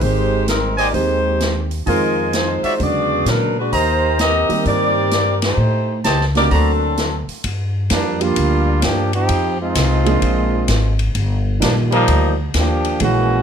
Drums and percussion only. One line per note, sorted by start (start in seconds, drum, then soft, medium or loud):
0.01 kick soft
0.01 open hi-hat soft
0.48 snare medium
0.48 closed hi-hat medium
0.78 open hi-hat soft
0.94 kick soft
0.94 open hi-hat soft
1.40 snare medium
1.40 closed hi-hat medium
1.71 open hi-hat soft
1.87 kick soft
1.87 open hi-hat soft
2.33 snare medium
2.33 closed hi-hat medium
2.64 open hi-hat soft
2.80 kick soft
2.80 open hi-hat soft
3.26 snare medium
3.26 closed hi-hat medium
3.73 kick soft
3.73 open hi-hat medium
4.19 snare medium
4.19 closed hi-hat medium
4.50 open hi-hat soft
4.65 kick soft
4.65 open hi-hat soft
5.11 snare medium
5.11 closed hi-hat medium
5.42 snare medium
5.42 ride medium
6.04 snare medium
6.04 closed hi-hat medium
6.21 snare soft
6.35 snare soft
6.35 open hi-hat soft
6.51 kick soft
6.51 open hi-hat soft
6.97 snare medium
6.97 closed hi-hat soft
7.29 open hi-hat soft
7.44 kick soft
7.44 ride medium
7.90 kick soft
7.90 snare medium
7.90 hi-hat pedal medium
7.90 ride medium
8.21 ride medium
8.36 kick soft
8.36 ride medium
8.82 kick soft
8.82 snare medium
8.82 hi-hat pedal medium
8.82 ride medium
9.13 ride soft
9.29 kick soft
9.29 ride medium
9.75 kick soft
9.75 snare medium
9.75 hi-hat pedal medium
9.75 ride medium
10.06 ride medium
10.22 kick soft
10.22 ride medium
10.68 kick soft
10.68 snare medium
10.68 hi-hat pedal medium
10.68 ride medium
10.99 ride soft
11.15 kick soft
11.15 ride medium
11.62 kick soft
11.62 snare medium
11.62 hi-hat pedal medium
11.62 ride medium
11.92 ride medium
12.08 kick soft
12.08 ride medium
12.54 kick soft
12.54 snare medium
12.54 hi-hat pedal medium
12.54 ride medium
12.85 ride soft
13.00 kick soft
13.00 ride medium